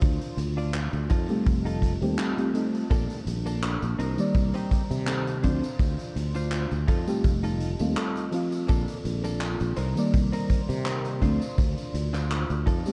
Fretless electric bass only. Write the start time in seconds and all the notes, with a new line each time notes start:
0.02 D2
0.37 D2
0.93 D2
1.11 F2
1.46 F1
2.02 D#2
2.91 A#1
3.27 A#1
3.82 A#1
3.99 C2
4.35 C2
4.91 C3
5.44 D2
5.79 D2
6.16 D2
6.72 D2
6.88 F2
7.24 F1
7.80 D#2
8.69 A#1
9.05 A#1
9.61 A#1
9.77 C2
10.14 C2
10.69 C3
11.22 D2
11.58 D2
11.94 D2
12.50 D2
12.67 F2